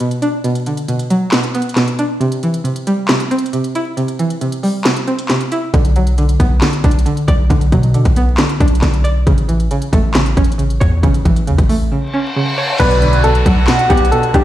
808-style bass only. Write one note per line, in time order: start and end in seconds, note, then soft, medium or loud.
5.74 6.37 B1 loud
6.40 6.61 B1 loud
6.84 7.05 B1 loud
7.28 7.49 B1 loud
7.50 7.71 B1 loud
7.72 8.04 B2 loud
8.05 8.37 B1 loud
8.60 8.82 B1 loud
8.82 9.25 B1 loud
9.27 9.69 A1 loud
9.93 10.35 A1 loud
10.37 10.79 A1 loud
10.81 11.02 E2 loud
11.03 11.24 A1 loud
11.25 11.49 A1 loud
11.47 11.58 E2 loud
11.58 11.90 A1 loud
12.80 13.43 B1 loud
13.46 13.67 B1 loud
13.90 14.11 B1 loud
14.34 14.44 B1 loud